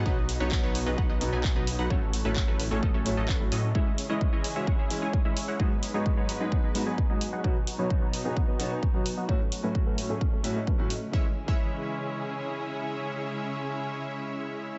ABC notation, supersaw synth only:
X:1
M:4/4
L:1/16
Q:1/4=130
K:C#m
V:1 name="Supersaw synth"
[F,B,DBd]3 [F,B,DBc] z [F,B,DBc] z [F,B,DBd] [F,B,DBf] [F,B,DBd]2 [F,B,DBg]2 [F,B,DBd]2 [F,B,DBf] | [F,A,CAc]3 [F,A,CAB] z [F,A,CAB] z [F,A,CAc] [F,A,CAd] [F,A,CAc]2 [F,A,CAd] [F,A,CB] z [F,A,CAd]2 | [G,CEce]3 [G,CEcd] z [G,CEcd] z [G,CEce] [CEcf] [G,CEce]2 [G,CEcg]2 [G,CEce]2 [G,CEcf] | [F,B,DGd]3 [F,B,DGc] z [F,B,DGc] z [F,B,DGd] [F,B,DGf] [F,B,DGd]2 [F,B,DGg]2 [F,B,DGd]2 [F,B,DGf] |
[F,B,DBd]3 [F,B,DBc] z [F,B,DBc] z [F,B,DBd] [F,B,Df] [F,B,DBd]2 [F,B,DBg]2 [F,B,DBd]2 [F,B,DBf] | [F,A,CAc]3 [F,A,CAB] z [F,A,CAB] z [F,A,CAc] [F,A,CAd] [F,A,CAc]2 [F,A,CAd] [F,A,CAB] z [F,A,CAd]2 | [G,CEce] z2 [G,CEce]12- [G,CEce]- | [G,CEce]16 |]